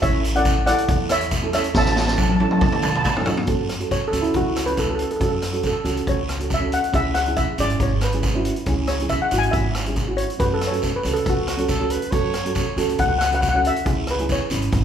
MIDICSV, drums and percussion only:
0, 0, Header, 1, 2, 480
1, 0, Start_track
1, 0, Tempo, 432277
1, 31, Time_signature, 4, 2, 24, 8
1, 16483, End_track
2, 0, Start_track
2, 0, Title_t, "Drums"
2, 24, Note_on_c, 9, 74, 76
2, 29, Note_on_c, 9, 36, 112
2, 35, Note_on_c, 9, 42, 64
2, 135, Note_off_c, 9, 74, 0
2, 140, Note_off_c, 9, 36, 0
2, 146, Note_off_c, 9, 42, 0
2, 274, Note_on_c, 9, 42, 86
2, 386, Note_off_c, 9, 42, 0
2, 399, Note_on_c, 9, 42, 62
2, 499, Note_off_c, 9, 42, 0
2, 499, Note_on_c, 9, 42, 61
2, 500, Note_on_c, 9, 73, 79
2, 503, Note_on_c, 9, 36, 90
2, 610, Note_off_c, 9, 42, 0
2, 611, Note_off_c, 9, 73, 0
2, 614, Note_off_c, 9, 36, 0
2, 745, Note_on_c, 9, 37, 92
2, 745, Note_on_c, 9, 42, 92
2, 856, Note_off_c, 9, 37, 0
2, 856, Note_off_c, 9, 42, 0
2, 870, Note_on_c, 9, 42, 69
2, 981, Note_off_c, 9, 42, 0
2, 982, Note_on_c, 9, 42, 66
2, 983, Note_on_c, 9, 36, 117
2, 987, Note_on_c, 9, 74, 73
2, 1093, Note_off_c, 9, 42, 0
2, 1095, Note_off_c, 9, 36, 0
2, 1098, Note_off_c, 9, 74, 0
2, 1213, Note_on_c, 9, 37, 84
2, 1213, Note_on_c, 9, 42, 86
2, 1223, Note_on_c, 9, 73, 74
2, 1324, Note_off_c, 9, 37, 0
2, 1324, Note_off_c, 9, 42, 0
2, 1334, Note_off_c, 9, 73, 0
2, 1342, Note_on_c, 9, 42, 68
2, 1453, Note_off_c, 9, 42, 0
2, 1455, Note_on_c, 9, 42, 72
2, 1460, Note_on_c, 9, 36, 87
2, 1460, Note_on_c, 9, 73, 77
2, 1566, Note_off_c, 9, 42, 0
2, 1571, Note_off_c, 9, 36, 0
2, 1571, Note_off_c, 9, 73, 0
2, 1700, Note_on_c, 9, 37, 76
2, 1700, Note_on_c, 9, 42, 80
2, 1703, Note_on_c, 9, 73, 75
2, 1811, Note_off_c, 9, 37, 0
2, 1811, Note_off_c, 9, 42, 0
2, 1814, Note_off_c, 9, 73, 0
2, 1820, Note_on_c, 9, 42, 61
2, 1931, Note_off_c, 9, 42, 0
2, 1937, Note_on_c, 9, 38, 65
2, 1940, Note_on_c, 9, 36, 108
2, 1940, Note_on_c, 9, 74, 72
2, 2048, Note_off_c, 9, 38, 0
2, 2051, Note_off_c, 9, 36, 0
2, 2051, Note_off_c, 9, 74, 0
2, 2059, Note_on_c, 9, 38, 50
2, 2170, Note_off_c, 9, 38, 0
2, 2176, Note_on_c, 9, 38, 65
2, 2287, Note_off_c, 9, 38, 0
2, 2301, Note_on_c, 9, 38, 57
2, 2412, Note_off_c, 9, 38, 0
2, 2417, Note_on_c, 9, 48, 79
2, 2421, Note_on_c, 9, 36, 88
2, 2421, Note_on_c, 9, 73, 79
2, 2528, Note_off_c, 9, 48, 0
2, 2532, Note_off_c, 9, 36, 0
2, 2532, Note_off_c, 9, 73, 0
2, 2550, Note_on_c, 9, 48, 68
2, 2661, Note_off_c, 9, 48, 0
2, 2665, Note_on_c, 9, 48, 78
2, 2776, Note_off_c, 9, 48, 0
2, 2784, Note_on_c, 9, 47, 73
2, 2895, Note_off_c, 9, 47, 0
2, 2897, Note_on_c, 9, 47, 79
2, 2900, Note_on_c, 9, 74, 72
2, 2902, Note_on_c, 9, 36, 116
2, 3008, Note_off_c, 9, 47, 0
2, 3011, Note_off_c, 9, 74, 0
2, 3013, Note_off_c, 9, 36, 0
2, 3023, Note_on_c, 9, 47, 83
2, 3134, Note_off_c, 9, 47, 0
2, 3138, Note_on_c, 9, 73, 70
2, 3144, Note_on_c, 9, 45, 88
2, 3249, Note_off_c, 9, 73, 0
2, 3255, Note_off_c, 9, 45, 0
2, 3278, Note_on_c, 9, 45, 82
2, 3379, Note_on_c, 9, 73, 73
2, 3385, Note_on_c, 9, 36, 84
2, 3388, Note_off_c, 9, 45, 0
2, 3388, Note_on_c, 9, 45, 95
2, 3490, Note_off_c, 9, 73, 0
2, 3496, Note_off_c, 9, 36, 0
2, 3499, Note_off_c, 9, 45, 0
2, 3512, Note_on_c, 9, 43, 82
2, 3615, Note_off_c, 9, 43, 0
2, 3615, Note_on_c, 9, 43, 98
2, 3620, Note_on_c, 9, 73, 70
2, 3726, Note_off_c, 9, 43, 0
2, 3731, Note_off_c, 9, 73, 0
2, 3744, Note_on_c, 9, 43, 91
2, 3852, Note_on_c, 9, 42, 62
2, 3856, Note_off_c, 9, 43, 0
2, 3860, Note_on_c, 9, 36, 105
2, 3867, Note_on_c, 9, 74, 63
2, 3963, Note_off_c, 9, 42, 0
2, 3971, Note_off_c, 9, 36, 0
2, 3978, Note_off_c, 9, 74, 0
2, 4100, Note_on_c, 9, 37, 69
2, 4100, Note_on_c, 9, 42, 77
2, 4211, Note_off_c, 9, 37, 0
2, 4211, Note_off_c, 9, 42, 0
2, 4225, Note_on_c, 9, 42, 58
2, 4336, Note_off_c, 9, 42, 0
2, 4343, Note_on_c, 9, 42, 57
2, 4344, Note_on_c, 9, 36, 79
2, 4347, Note_on_c, 9, 73, 67
2, 4454, Note_off_c, 9, 42, 0
2, 4455, Note_off_c, 9, 36, 0
2, 4458, Note_off_c, 9, 73, 0
2, 4586, Note_on_c, 9, 42, 82
2, 4587, Note_on_c, 9, 73, 65
2, 4697, Note_off_c, 9, 42, 0
2, 4698, Note_off_c, 9, 73, 0
2, 4708, Note_on_c, 9, 42, 58
2, 4816, Note_off_c, 9, 42, 0
2, 4816, Note_on_c, 9, 42, 59
2, 4822, Note_on_c, 9, 74, 62
2, 4824, Note_on_c, 9, 36, 95
2, 4927, Note_off_c, 9, 42, 0
2, 4933, Note_off_c, 9, 74, 0
2, 4935, Note_off_c, 9, 36, 0
2, 5062, Note_on_c, 9, 73, 62
2, 5068, Note_on_c, 9, 37, 75
2, 5068, Note_on_c, 9, 42, 82
2, 5173, Note_off_c, 9, 73, 0
2, 5179, Note_off_c, 9, 37, 0
2, 5179, Note_off_c, 9, 42, 0
2, 5189, Note_on_c, 9, 42, 58
2, 5298, Note_off_c, 9, 42, 0
2, 5298, Note_on_c, 9, 42, 62
2, 5301, Note_on_c, 9, 36, 83
2, 5303, Note_on_c, 9, 73, 60
2, 5409, Note_off_c, 9, 42, 0
2, 5412, Note_off_c, 9, 36, 0
2, 5414, Note_off_c, 9, 73, 0
2, 5540, Note_on_c, 9, 42, 78
2, 5651, Note_off_c, 9, 42, 0
2, 5670, Note_on_c, 9, 42, 55
2, 5781, Note_off_c, 9, 42, 0
2, 5783, Note_on_c, 9, 36, 106
2, 5783, Note_on_c, 9, 42, 57
2, 5789, Note_on_c, 9, 74, 65
2, 5894, Note_off_c, 9, 36, 0
2, 5894, Note_off_c, 9, 42, 0
2, 5900, Note_off_c, 9, 74, 0
2, 6020, Note_on_c, 9, 37, 72
2, 6020, Note_on_c, 9, 42, 71
2, 6132, Note_off_c, 9, 37, 0
2, 6132, Note_off_c, 9, 42, 0
2, 6145, Note_on_c, 9, 42, 53
2, 6253, Note_off_c, 9, 42, 0
2, 6253, Note_on_c, 9, 42, 53
2, 6258, Note_on_c, 9, 36, 78
2, 6267, Note_on_c, 9, 73, 67
2, 6364, Note_off_c, 9, 42, 0
2, 6369, Note_off_c, 9, 36, 0
2, 6378, Note_off_c, 9, 73, 0
2, 6499, Note_on_c, 9, 42, 73
2, 6505, Note_on_c, 9, 73, 58
2, 6610, Note_off_c, 9, 42, 0
2, 6616, Note_off_c, 9, 73, 0
2, 6630, Note_on_c, 9, 42, 58
2, 6741, Note_off_c, 9, 42, 0
2, 6742, Note_on_c, 9, 36, 100
2, 6742, Note_on_c, 9, 74, 62
2, 6746, Note_on_c, 9, 42, 53
2, 6853, Note_off_c, 9, 36, 0
2, 6853, Note_off_c, 9, 74, 0
2, 6857, Note_off_c, 9, 42, 0
2, 6978, Note_on_c, 9, 73, 59
2, 6984, Note_on_c, 9, 37, 80
2, 6984, Note_on_c, 9, 42, 76
2, 7089, Note_off_c, 9, 73, 0
2, 7095, Note_off_c, 9, 37, 0
2, 7095, Note_off_c, 9, 42, 0
2, 7112, Note_on_c, 9, 42, 54
2, 7220, Note_on_c, 9, 73, 69
2, 7222, Note_on_c, 9, 36, 82
2, 7223, Note_off_c, 9, 42, 0
2, 7227, Note_on_c, 9, 42, 57
2, 7331, Note_off_c, 9, 73, 0
2, 7334, Note_off_c, 9, 36, 0
2, 7338, Note_off_c, 9, 42, 0
2, 7462, Note_on_c, 9, 42, 80
2, 7573, Note_off_c, 9, 42, 0
2, 7592, Note_on_c, 9, 42, 56
2, 7694, Note_on_c, 9, 74, 66
2, 7701, Note_on_c, 9, 36, 100
2, 7703, Note_off_c, 9, 42, 0
2, 7705, Note_on_c, 9, 42, 60
2, 7805, Note_off_c, 9, 74, 0
2, 7812, Note_off_c, 9, 36, 0
2, 7816, Note_off_c, 9, 42, 0
2, 7935, Note_on_c, 9, 37, 79
2, 7935, Note_on_c, 9, 42, 73
2, 8046, Note_off_c, 9, 37, 0
2, 8046, Note_off_c, 9, 42, 0
2, 8060, Note_on_c, 9, 42, 56
2, 8171, Note_off_c, 9, 42, 0
2, 8177, Note_on_c, 9, 42, 62
2, 8179, Note_on_c, 9, 73, 67
2, 8180, Note_on_c, 9, 36, 82
2, 8288, Note_off_c, 9, 42, 0
2, 8290, Note_off_c, 9, 73, 0
2, 8291, Note_off_c, 9, 36, 0
2, 8417, Note_on_c, 9, 73, 62
2, 8418, Note_on_c, 9, 42, 82
2, 8528, Note_off_c, 9, 73, 0
2, 8529, Note_off_c, 9, 42, 0
2, 8547, Note_on_c, 9, 42, 56
2, 8658, Note_off_c, 9, 42, 0
2, 8658, Note_on_c, 9, 74, 63
2, 8661, Note_on_c, 9, 36, 108
2, 8661, Note_on_c, 9, 42, 57
2, 8769, Note_off_c, 9, 74, 0
2, 8772, Note_off_c, 9, 36, 0
2, 8772, Note_off_c, 9, 42, 0
2, 8893, Note_on_c, 9, 73, 64
2, 8896, Note_on_c, 9, 37, 81
2, 8896, Note_on_c, 9, 42, 84
2, 9004, Note_off_c, 9, 73, 0
2, 9007, Note_off_c, 9, 37, 0
2, 9007, Note_off_c, 9, 42, 0
2, 9021, Note_on_c, 9, 42, 62
2, 9132, Note_off_c, 9, 42, 0
2, 9135, Note_on_c, 9, 42, 58
2, 9141, Note_on_c, 9, 36, 89
2, 9141, Note_on_c, 9, 73, 76
2, 9246, Note_off_c, 9, 42, 0
2, 9252, Note_off_c, 9, 36, 0
2, 9252, Note_off_c, 9, 73, 0
2, 9382, Note_on_c, 9, 42, 85
2, 9493, Note_off_c, 9, 42, 0
2, 9506, Note_on_c, 9, 42, 57
2, 9615, Note_off_c, 9, 42, 0
2, 9615, Note_on_c, 9, 42, 64
2, 9622, Note_on_c, 9, 36, 101
2, 9625, Note_on_c, 9, 74, 69
2, 9726, Note_off_c, 9, 42, 0
2, 9733, Note_off_c, 9, 36, 0
2, 9737, Note_off_c, 9, 74, 0
2, 9854, Note_on_c, 9, 37, 76
2, 9854, Note_on_c, 9, 42, 68
2, 9965, Note_off_c, 9, 37, 0
2, 9965, Note_off_c, 9, 42, 0
2, 9989, Note_on_c, 9, 42, 56
2, 10094, Note_on_c, 9, 73, 71
2, 10095, Note_off_c, 9, 42, 0
2, 10095, Note_on_c, 9, 42, 57
2, 10100, Note_on_c, 9, 36, 75
2, 10205, Note_off_c, 9, 73, 0
2, 10206, Note_off_c, 9, 42, 0
2, 10211, Note_off_c, 9, 36, 0
2, 10339, Note_on_c, 9, 42, 80
2, 10340, Note_on_c, 9, 73, 66
2, 10450, Note_off_c, 9, 42, 0
2, 10451, Note_off_c, 9, 73, 0
2, 10470, Note_on_c, 9, 42, 57
2, 10578, Note_on_c, 9, 74, 69
2, 10581, Note_off_c, 9, 42, 0
2, 10584, Note_on_c, 9, 36, 107
2, 10585, Note_on_c, 9, 42, 55
2, 10689, Note_off_c, 9, 74, 0
2, 10695, Note_off_c, 9, 36, 0
2, 10696, Note_off_c, 9, 42, 0
2, 10822, Note_on_c, 9, 37, 81
2, 10822, Note_on_c, 9, 42, 75
2, 10830, Note_on_c, 9, 73, 62
2, 10933, Note_off_c, 9, 37, 0
2, 10933, Note_off_c, 9, 42, 0
2, 10941, Note_off_c, 9, 73, 0
2, 10949, Note_on_c, 9, 42, 60
2, 11058, Note_off_c, 9, 42, 0
2, 11058, Note_on_c, 9, 42, 57
2, 11063, Note_on_c, 9, 73, 69
2, 11064, Note_on_c, 9, 36, 76
2, 11169, Note_off_c, 9, 42, 0
2, 11174, Note_off_c, 9, 73, 0
2, 11175, Note_off_c, 9, 36, 0
2, 11303, Note_on_c, 9, 42, 71
2, 11414, Note_off_c, 9, 42, 0
2, 11436, Note_on_c, 9, 42, 55
2, 11544, Note_on_c, 9, 74, 60
2, 11546, Note_on_c, 9, 36, 101
2, 11547, Note_off_c, 9, 42, 0
2, 11547, Note_on_c, 9, 42, 58
2, 11656, Note_off_c, 9, 74, 0
2, 11657, Note_off_c, 9, 36, 0
2, 11658, Note_off_c, 9, 42, 0
2, 11784, Note_on_c, 9, 37, 76
2, 11784, Note_on_c, 9, 42, 77
2, 11895, Note_off_c, 9, 37, 0
2, 11895, Note_off_c, 9, 42, 0
2, 11920, Note_on_c, 9, 42, 54
2, 12014, Note_on_c, 9, 73, 64
2, 12026, Note_on_c, 9, 36, 82
2, 12030, Note_off_c, 9, 42, 0
2, 12030, Note_on_c, 9, 42, 57
2, 12125, Note_off_c, 9, 73, 0
2, 12137, Note_off_c, 9, 36, 0
2, 12141, Note_off_c, 9, 42, 0
2, 12253, Note_on_c, 9, 73, 61
2, 12271, Note_on_c, 9, 42, 77
2, 12364, Note_off_c, 9, 73, 0
2, 12383, Note_off_c, 9, 42, 0
2, 12394, Note_on_c, 9, 42, 61
2, 12492, Note_on_c, 9, 74, 71
2, 12503, Note_off_c, 9, 42, 0
2, 12503, Note_on_c, 9, 42, 60
2, 12504, Note_on_c, 9, 36, 111
2, 12603, Note_off_c, 9, 74, 0
2, 12614, Note_off_c, 9, 42, 0
2, 12615, Note_off_c, 9, 36, 0
2, 12742, Note_on_c, 9, 37, 81
2, 12742, Note_on_c, 9, 42, 81
2, 12854, Note_off_c, 9, 37, 0
2, 12854, Note_off_c, 9, 42, 0
2, 12862, Note_on_c, 9, 42, 59
2, 12973, Note_off_c, 9, 42, 0
2, 12975, Note_on_c, 9, 73, 73
2, 12978, Note_on_c, 9, 42, 66
2, 12979, Note_on_c, 9, 36, 80
2, 13086, Note_off_c, 9, 73, 0
2, 13089, Note_off_c, 9, 42, 0
2, 13090, Note_off_c, 9, 36, 0
2, 13213, Note_on_c, 9, 42, 89
2, 13324, Note_off_c, 9, 42, 0
2, 13347, Note_on_c, 9, 42, 65
2, 13458, Note_off_c, 9, 42, 0
2, 13458, Note_on_c, 9, 74, 66
2, 13460, Note_on_c, 9, 42, 66
2, 13463, Note_on_c, 9, 36, 110
2, 13569, Note_off_c, 9, 74, 0
2, 13571, Note_off_c, 9, 42, 0
2, 13574, Note_off_c, 9, 36, 0
2, 13698, Note_on_c, 9, 37, 79
2, 13698, Note_on_c, 9, 42, 73
2, 13809, Note_off_c, 9, 37, 0
2, 13809, Note_off_c, 9, 42, 0
2, 13833, Note_on_c, 9, 42, 57
2, 13937, Note_on_c, 9, 73, 71
2, 13942, Note_off_c, 9, 42, 0
2, 13942, Note_on_c, 9, 42, 57
2, 13944, Note_on_c, 9, 36, 85
2, 14048, Note_off_c, 9, 73, 0
2, 14053, Note_off_c, 9, 42, 0
2, 14055, Note_off_c, 9, 36, 0
2, 14189, Note_on_c, 9, 73, 62
2, 14190, Note_on_c, 9, 42, 80
2, 14300, Note_off_c, 9, 73, 0
2, 14301, Note_off_c, 9, 42, 0
2, 14316, Note_on_c, 9, 42, 59
2, 14418, Note_off_c, 9, 42, 0
2, 14418, Note_on_c, 9, 42, 58
2, 14424, Note_on_c, 9, 36, 105
2, 14427, Note_on_c, 9, 74, 72
2, 14529, Note_off_c, 9, 42, 0
2, 14535, Note_off_c, 9, 36, 0
2, 14538, Note_off_c, 9, 74, 0
2, 14665, Note_on_c, 9, 37, 86
2, 14665, Note_on_c, 9, 42, 73
2, 14667, Note_on_c, 9, 73, 69
2, 14776, Note_off_c, 9, 37, 0
2, 14776, Note_off_c, 9, 42, 0
2, 14778, Note_off_c, 9, 73, 0
2, 14794, Note_on_c, 9, 42, 59
2, 14905, Note_off_c, 9, 42, 0
2, 14905, Note_on_c, 9, 73, 69
2, 14908, Note_on_c, 9, 36, 85
2, 14912, Note_on_c, 9, 42, 59
2, 15016, Note_off_c, 9, 73, 0
2, 15019, Note_off_c, 9, 36, 0
2, 15023, Note_off_c, 9, 42, 0
2, 15152, Note_on_c, 9, 42, 76
2, 15263, Note_off_c, 9, 42, 0
2, 15282, Note_on_c, 9, 42, 54
2, 15388, Note_off_c, 9, 42, 0
2, 15388, Note_on_c, 9, 42, 60
2, 15390, Note_on_c, 9, 36, 114
2, 15390, Note_on_c, 9, 74, 72
2, 15499, Note_off_c, 9, 42, 0
2, 15501, Note_off_c, 9, 36, 0
2, 15501, Note_off_c, 9, 74, 0
2, 15623, Note_on_c, 9, 37, 76
2, 15623, Note_on_c, 9, 42, 68
2, 15734, Note_off_c, 9, 37, 0
2, 15734, Note_off_c, 9, 42, 0
2, 15756, Note_on_c, 9, 42, 54
2, 15866, Note_off_c, 9, 42, 0
2, 15866, Note_on_c, 9, 42, 55
2, 15871, Note_on_c, 9, 36, 76
2, 15874, Note_on_c, 9, 73, 78
2, 15977, Note_off_c, 9, 42, 0
2, 15982, Note_off_c, 9, 36, 0
2, 15985, Note_off_c, 9, 73, 0
2, 16102, Note_on_c, 9, 73, 71
2, 16110, Note_on_c, 9, 42, 81
2, 16213, Note_off_c, 9, 73, 0
2, 16221, Note_off_c, 9, 42, 0
2, 16234, Note_on_c, 9, 42, 59
2, 16345, Note_off_c, 9, 42, 0
2, 16346, Note_on_c, 9, 74, 79
2, 16349, Note_on_c, 9, 42, 62
2, 16352, Note_on_c, 9, 36, 113
2, 16457, Note_off_c, 9, 74, 0
2, 16460, Note_off_c, 9, 42, 0
2, 16463, Note_off_c, 9, 36, 0
2, 16483, End_track
0, 0, End_of_file